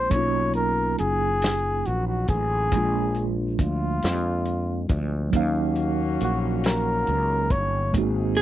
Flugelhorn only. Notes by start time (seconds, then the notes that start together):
Already playing: C5
0.11 C#5
0.55 A#4
0.99 G#4
1.86 F#4
2.08 F#4
2.29 G#4
3.61 F4
6.24 F#4
6.67 A#4
7.51 C#5